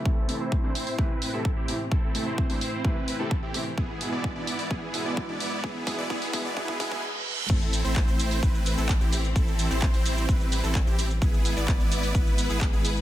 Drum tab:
CC |----------------|----------------|----------------|----------------|
HH |--o---oo--o---o-|--o--oo---o---o-|--o---oo--o---o-|--o--oo---o-----|
SH |----------------|----------------|----------------|----------------|
CP |----------------|----------------|----------------|----------------|
T1 |----------------|----------------|----------------|------------oo--|
T2 |----------------|----------------|----------------|---------------o|
BD |o---o---o---o---|o---o---o---o---|o---o---o---o---|o-o-o-o-oooo----|

CC |x---------------|----------------|----------------|
HH |--o---oo--o---o-|--o--oo---o---o-|--o---oo--o---o-|
SH |xxxxxxxxxxxxxxxx|xxxxxxxxxxxxxxxx|xxxxxxxxxxxxxxxx|
CP |----x-------x---|---xx-------x---|----x-------x---|
T1 |----------------|----------------|----------------|
T2 |----------------|----------------|----------------|
BD |o---o---o---o---|o---o---o---o---|o---o---o---o---|